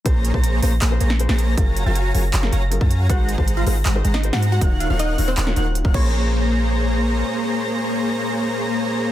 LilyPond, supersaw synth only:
\new Staff \with { instrumentName = "Supersaw synth" } { \time 4/4 \key bes \minor \tempo 4 = 158 <bes aes' c'' des'' bes''>8. <bes aes' c''>8. <bes aes' c'' des'' bes''>16 r16 <bes aes' c'' des'' bes''>16 r16 <bes aes' c'' des'' bes''>16 r8 <bes aes' c'' des'' bes''>8. | <ges' des'' f'' aes''>8. <ges' des'' f'' aes'' bes''>8. <ges' des'' f'' aes'' bes''>16 r16 <ges' des'' f'' aes'' bes''>16 r16 <ges' des'' f'' aes'' bes''>16 r8 <ges' des'' f'' aes'' bes''>8. | <aes aes'>8. <aes aes' c'' ges'' bes''>8. <aes aes' c'' ges'' bes''>16 r16 <aes aes' c'' ges'' bes''>16 r16 <aes aes' c'' ges'' bes''>16 r8 <aes aes' c'' ges'' bes''>8. | <ees' bes' des'' f''>8. <ees' bes' des'' f'' ges''>8. <ees' bes' des'' f'' ges''>16 r16 <ees' bes' des'' f'' ges''>16 r16 <ees' bes' des'' f'' ges''>16 r8 <ees' bes' des'' f'' ges''>16 <bes aes' c'' des'' bes''>8~ |
<bes aes' c'' des'' bes''>1~ | <bes aes' c'' des'' bes''>1 | }